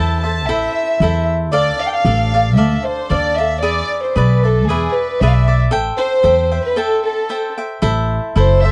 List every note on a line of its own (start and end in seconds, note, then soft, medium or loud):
0.00 0.48 E2 medium
0.00 0.23 E4 soft
0.00 0.23 A4 medium
0.00 0.23 C5 medium
0.00 0.22 E5 medium
0.00 0.19 A5 medium
0.20 0.48 E5 soft
0.20 0.44 A5 medium
0.24 0.48 A4 soft
0.24 0.48 C5 soft
0.46 0.66 A1 medium
0.46 1.00 E4 medium
0.46 1.02 A4 medium
0.46 1.01 C5 medium
0.46 1.26 E5 medium
0.50 1.01 E5 medium
1.00 1.51 E2 medium
1.00 1.51 E4 medium
1.00 1.52 A4 medium
1.00 1.53 C5 medium
1.00 1.53 E5 medium
1.51 1.70 D2 medium
1.51 2.05 D4 medium
1.51 2.04 A4 medium
1.51 2.06 D5 medium
1.51 1.79 D5 medium
1.51 2.05 F5 medium
1.81 1.87 F5 medium
1.87 1.93 G5 medium
1.92 2.57 F5 medium
2.05 2.57 A1 medium
2.05 2.32 D4 medium
2.05 2.33 A4 medium
2.05 2.33 D5 medium
2.05 2.33 F5 medium
2.34 2.56 A4 soft
2.34 2.57 D5 soft
2.34 2.57 F5 soft
2.56 2.75 D2 medium
2.56 3.09 D4 medium
2.56 3.09 A4 medium
2.56 3.10 D5 medium
2.56 2.82 E5 medium
2.56 3.10 F5 medium
2.84 3.09 C5 medium
3.10 3.63 D#2 medium
3.10 3.38 D4 medium
3.10 3.38 A4 medium
3.10 3.38 D5 medium
3.10 3.37 D5 medium
3.10 3.37 F5 soft
3.36 3.62 A4 soft
3.36 3.63 D5 soft
3.36 3.62 E5 medium
3.36 3.63 F5 soft
3.62 3.81 E2 medium
3.62 4.14 G#4 medium
3.62 4.16 B4 medium
3.62 4.00 D5 medium
3.62 4.17 D5 medium
3.62 4.16 E5 medium
4.03 4.15 C5 medium
4.15 4.69 B1 medium
4.15 4.44 G#4 medium
4.15 4.43 B4 medium
4.15 4.44 B4 medium
4.15 4.42 D5 medium
4.15 4.44 E5 soft
4.43 4.69 A4 medium
4.43 4.69 B4 soft
4.43 4.69 D5 soft
4.43 4.69 E5 soft
4.67 4.86 E2 medium
4.67 4.95 G#4 medium
4.67 5.21 G#4 medium
4.67 5.21 B4 medium
4.67 5.21 D5 medium
4.67 5.23 E5 medium
4.94 5.20 B4 medium
5.20 5.71 B1 medium
5.20 5.48 G#4 medium
5.20 5.48 B4 medium
5.20 5.46 D5 medium
5.20 5.27 E5 medium
5.20 5.48 E5 medium
5.27 5.35 F5 medium
5.31 5.58 E5 medium
5.48 5.71 B4 soft
5.48 5.72 D5 soft
5.48 5.71 E5 soft
5.71 5.89 A1 medium
5.71 6.23 A4 medium
5.71 6.23 C5 medium
5.71 6.24 E5 medium
5.71 6.24 G5 medium
5.97 6.59 C5 medium
6.23 6.58 E2 medium
6.23 6.51 A4 soft
6.23 6.52 C5 medium
6.23 6.51 E5 medium
6.23 6.50 G5 medium
6.52 6.76 C5 soft
6.52 6.76 E5 soft
6.52 6.77 G5 soft
6.63 6.76 B4 medium
6.76 7.29 A4 medium
6.76 7.04 A4 medium
6.76 7.29 C5 medium
6.76 7.29 E5 medium
6.76 7.30 G5 medium
7.05 7.54 A4 medium
7.29 7.57 A4 medium
7.29 7.58 C5 medium
7.29 7.57 E5 medium
7.29 7.56 G5 soft
7.58 7.81 C5 soft
7.58 7.82 E5 soft
7.58 7.82 G5 soft
7.82 8.17 A1 medium
7.82 8.34 E4 medium
7.82 8.35 A4 medium
7.82 8.36 C5 medium
7.82 8.36 E5 medium
8.36 8.70 F#1 medium
8.36 8.63 E4 medium
8.36 8.64 A4 medium
8.36 8.64 C5 medium
8.36 8.62 C5 medium
8.36 8.63 E5 medium
8.62 8.72 A4 soft
8.62 8.72 C5 soft
8.62 8.72 E5 medium
8.62 8.72 E5 soft